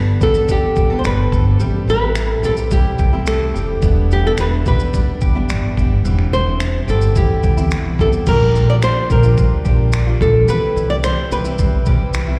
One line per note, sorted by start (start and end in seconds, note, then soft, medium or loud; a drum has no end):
0.00 0.16 G1 medium
0.00 1.60 G3 medium
0.00 0.21 B3 soft
0.00 1.66 B3 soft
0.00 0.20 D4 soft
0.00 0.47 D4 soft
0.00 0.21 G4 soft
0.00 0.21 A4 soft
0.00 0.23 B4 loud
0.20 1.01 A1 medium
0.20 0.47 G3 soft
0.20 0.49 B3 medium
0.20 0.48 D4 medium
0.20 0.35 G4 soft
0.20 0.48 A4 medium
0.20 0.50 A4 medium
0.20 kick medium
0.20 shaker soft
0.34 0.76 A4 medium
0.34 shaker soft
0.48 0.90 G3 medium
0.48 0.90 B3 medium
0.48 1.03 D4 soft
0.48 0.91 D4 soft
0.48 1.00 G4 medium
0.48 0.89 A4 medium
0.48 kick medium
0.48 shaker medium
0.76 0.90 G4 medium
0.76 kick medium
0.76 shaker soft
0.90 1.31 G3 medium
0.90 1.33 B3 medium
0.90 1.32 D4 medium
0.90 1.31 A4 soft
0.90 1.32 A4 medium
0.99 1.05 C5 medium
1.04 1.27 G1 medium
1.04 1.66 D4 medium
1.04 1.44 B4 medium
1.04 finger snap medium
1.04 shaker medium
1.32 1.55 G1 medium
1.32 1.58 G3 soft
1.32 1.61 B3 medium
1.32 1.60 D4 soft
1.32 2.44 A4 medium
1.32 1.62 A4 medium
1.32 kick medium
1.32 shaker soft
1.59 1.83 A1 medium
1.59 2.02 G3 medium
1.59 5.11 G3 medium
1.59 2.02 C4 medium
1.59 2.00 E4 medium
1.59 2.02 G4 medium
1.59 shaker soft
1.87 2.33 A1 medium
1.87 3.82 C4 soft
1.87 2.34 B4 medium
1.87 shaker soft
2.02 2.43 C4 soft
2.02 2.44 E4 medium
2.02 2.44 G4 soft
2.15 2.71 E4 medium
2.15 finger snap loud
2.15 shaker medium
2.34 2.45 A4 medium
2.43 2.89 B1 medium
2.43 2.69 G3 medium
2.43 2.70 C4 medium
2.43 2.72 E4 medium
2.43 2.99 G4 medium
2.43 2.71 G4 medium
2.43 2.52 A4 medium
2.43 shaker soft
2.57 shaker soft
2.70 3.13 G3 medium
2.70 3.13 C4 medium
2.70 3.26 E4 medium
2.70 3.11 E4 medium
2.70 3.29 G4 medium
2.70 3.12 G4 soft
2.70 kick medium
2.70 shaker medium
2.98 3.45 C2 medium
2.98 3.54 G4 medium
2.98 kick medium
2.98 shaker soft
3.13 3.56 A2 medium
3.13 3.53 G3 soft
3.13 3.54 C4 soft
3.13 3.55 E4 medium
3.13 3.55 G4 medium
3.27 4.38 E4 medium
3.27 3.66 A4 medium
3.27 finger snap loud
3.27 shaker medium
3.54 3.78 F1 medium
3.54 3.80 G3 soft
3.54 3.82 C4 medium
3.54 3.83 E4 medium
3.54 4.66 G4 medium
3.54 3.83 G4 medium
3.54 shaker soft
3.81 4.28 E1 medium
3.81 4.24 G3 medium
3.81 4.10 B3 medium
3.81 4.23 B3 medium
3.81 4.24 D4 medium
3.81 4.22 E4 medium
3.81 kick medium
3.81 shaker medium
4.10 6.32 B3 soft
4.10 4.26 G4 medium
4.10 shaker soft
4.23 4.64 G3 soft
4.23 4.66 B3 soft
4.23 4.65 D4 soft
4.23 4.66 E4 medium
4.23 4.32 A4 medium
4.38 4.61 E1 medium
4.38 4.93 D4 medium
4.38 4.48 B4 medium
4.38 finger snap loud
4.38 shaker medium
4.65 5.45 A1 medium
4.65 4.92 G3 medium
4.65 4.94 B3 medium
4.65 4.94 D4 medium
4.65 4.95 E4 medium
4.65 5.21 G4 medium
4.65 5.74 B4 medium
4.65 kick medium
4.65 shaker soft
4.80 shaker soft
4.94 5.35 G3 soft
4.94 5.34 B3 medium
4.94 5.48 D4 medium
4.94 5.35 D4 medium
4.94 5.33 E4 medium
4.94 kick medium
4.94 shaker medium
5.21 5.77 G4 medium
5.21 kick medium
5.21 shaker soft
5.35 5.78 E2 medium
5.35 5.78 E3 medium
5.35 5.76 G3 medium
5.35 5.77 B3 medium
5.35 5.77 D4 medium
5.35 5.77 E4 medium
5.49 5.72 G1 medium
5.49 6.11 D4 medium
5.49 finger snap medium
5.49 shaker medium
5.77 6.00 G1 medium
5.77 6.03 G3 medium
5.77 6.05 B3 medium
5.77 6.05 D4 medium
5.77 6.06 E4 medium
5.77 6.87 G4 soft
5.77 kick medium
5.77 shaker soft
6.04 6.28 E1 medium
6.04 8.26 E3 medium
6.04 6.46 G3 medium
6.04 6.47 B3 medium
6.04 6.47 C4 medium
6.04 6.45 E4 medium
6.04 shaker medium
6.19 finger snap soft
6.32 6.78 E1 medium
6.32 8.32 B3 soft
6.32 6.89 C5 medium
6.32 shaker soft
6.46 6.86 G3 soft
6.46 6.87 C4 soft
6.46 6.88 E4 soft
6.60 7.15 E4 medium
6.60 finger snap loud
6.60 shaker medium
6.87 7.11 G1 medium
6.87 7.14 G3 medium
6.87 7.16 B3 medium
6.87 7.15 C4 medium
6.87 7.17 E4 medium
6.87 7.43 G4 medium
6.87 7.15 A4 medium
6.87 shaker soft
7.02 shaker soft
7.15 7.39 E2 medium
7.15 7.57 G3 medium
7.15 7.57 B3 medium
7.15 7.57 C4 soft
7.15 7.70 E4 medium
7.15 7.56 E4 medium
7.15 7.96 G4 medium
7.15 kick medium
7.15 shaker medium
7.43 7.66 D2 medium
7.43 7.99 G4 medium
7.43 kick medium
7.43 shaker soft
7.57 8.00 E2 soft
7.57 8.00 E3 medium
7.57 7.97 G3 medium
7.57 7.99 B3 medium
7.57 7.98 C4 soft
7.57 7.99 E4 medium
7.57 shaker soft
7.71 8.32 E4 medium
7.71 finger snap medium
7.71 muted upright bass stroke soft
7.71 shaker medium
7.85 7.97 C2 medium
7.98 8.22 E2 medium
7.98 8.26 G3 medium
7.98 8.28 B3 medium
7.98 8.27 C4 medium
7.98 8.28 E4 medium
7.98 8.27 G4 medium
7.98 8.08 A4 medium
7.98 kick medium
7.98 shaker soft
8.13 shaker soft
8.26 8.50 A#1 medium
8.26 8.81 D3 medium
8.26 10.48 F3 medium
8.26 8.83 G3 medium
8.26 8.83 D4 medium
8.26 8.84 F4 medium
8.26 9.09 G4 medium
8.26 8.69 A#4 medium
8.26 kick medium
8.26 crash medium
8.26 shaker medium
8.54 8.88 A#1 medium
8.54 9.91 D4 soft
8.54 shaker soft
8.70 8.75 D5 medium
8.82 9.24 D3 medium
8.82 9.25 G3 medium
8.82 9.36 A#3 medium
8.82 9.24 D4 medium
8.82 9.22 F4 medium
8.82 9.11 C5 medium
8.82 finger snap loud
8.82 shaker medium
9.10 9.33 A#1 medium
9.10 9.65 G4 medium
9.10 9.63 A#4 medium
9.10 kick medium
9.10 shaker soft
9.23 9.65 G3 soft
9.23 9.66 D4 soft
9.23 9.65 F4 medium
9.23 shaker soft
9.37 9.60 D2 medium
9.37 10.20 A#3 soft
9.37 kick medium
9.37 shaker medium
9.65 10.11 A#1 medium
9.65 10.07 D3 medium
9.65 10.08 G3 medium
9.65 10.08 D4 medium
9.65 10.06 F4 medium
9.65 10.48 G4 medium
9.65 kick medium
9.65 shaker soft
9.92 10.54 D4 medium
9.92 finger snap loud
9.92 shaker medium
10.07 10.47 G3 soft
10.07 10.49 D4 soft
10.07 10.48 F4 soft
10.21 10.44 A#1 medium
10.21 10.54 A#3 soft
10.21 10.47 A4 medium
10.21 kick medium
10.21 shaker soft
10.47 10.71 C2 medium
10.47 11.02 E3 medium
10.47 12.39 G3 medium
10.47 11.03 G3 medium
10.47 11.05 C4 medium
10.47 11.05 E4 medium
10.47 11.31 G4 medium
10.47 10.90 B4 loud
10.47 shaker medium
10.76 11.10 C2 medium
10.76 12.13 E4 soft
10.76 shaker soft
10.90 10.95 D5 loud
11.03 11.45 E3 medium
11.03 11.46 G3 medium
11.03 11.59 C4 soft
11.03 11.45 C4 medium
11.03 11.43 E4 medium
11.03 11.30 C5 medium
11.03 finger snap loud
11.03 shaker medium
11.31 11.54 C2 medium
11.31 11.86 G4 medium
11.31 11.84 B4 medium
11.31 shaker soft
11.44 11.87 G3 soft
11.44 11.87 C4 soft
11.44 11.86 E4 medium
11.44 shaker soft
11.59 11.82 B1 medium
11.59 12.39 C4 medium
11.59 kick medium
11.59 shaker medium
11.86 12.32 C2 medium
11.86 12.28 E3 medium
11.86 12.29 G3 medium
11.86 12.28 C4 medium
11.86 12.39 G4 medium
11.86 kick medium
11.86 shaker soft
11.90 12.27 E4 medium
12.14 12.39 E4 medium
12.14 finger snap loud
12.14 shaker medium
12.28 12.39 G3 soft
12.28 12.39 C4 soft
12.28 12.39 E4 medium